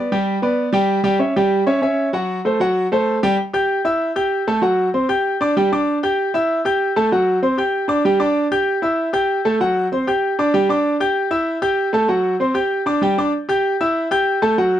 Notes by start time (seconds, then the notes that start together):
0.12 G3 G4 G5
0.42 B3 B4 D5
0.73 G3 G4 G5
1.04 G3 G4 G5
1.19 C#4 C#5 E5
1.36 G3 G4 G5
1.67 C#4 C#5 E5
1.82 C#4 C#5 E5
2.13 F#3 F#4 F#5
2.45 A3 A4 C5
2.60 F#3 F#4 F#5
2.92 A3 A4 C5
3.23 G3 G4 G5
3.53 G4 G5 G6
3.85 E4 E5 E6
4.16 G4 G5 G6
4.47 A3 A4 A5
4.62 F#3 F#4 F#5
4.94 C4 C5 C6
5.09 G4 G5 G6
5.41 D4 D5 D6
5.57 G3 G4 G5
5.72 D4 D5 D6
6.03 G4 G5 G6
6.34 E4 E5 E6
6.65 G4 G5 G6
6.96 A3 A4 A5
7.12 F#3 F#4 F#5
7.42 C4 C5 C6
7.58 G4 G5 G6
7.88 D4 D5 D6
8.05 G3 G4 G5
8.20 D4 D5 D6
8.52 G4 G5 G6
8.82 E4 E5 E6
9.13 G4 G5 G6
9.45 A3 A4 A5
9.60 F#3 F#4 F#5
9.92 C4 C5 C6
10.07 G4 G5 G6
10.39 D4 D5 D6
10.54 G3 G4 G5
10.69 D4 D5 D6
11.00 G4 G5 G6
11.31 E4 E5 E6
11.62 G4 G5 G6
11.93 A3 A4 A5
12.08 F#3 F#4 F#5
12.40 C4 C5 C6
12.54 G4 G5 G6
12.86 D4 D5 D6
13.02 G3 G4 G5
13.18 D4 D5 D6
13.49 G4 G5 G6
13.81 E4 E5 E6
14.11 G4 G5 G6
14.42 A3 A4 A5
14.58 F#3 F#4 F#5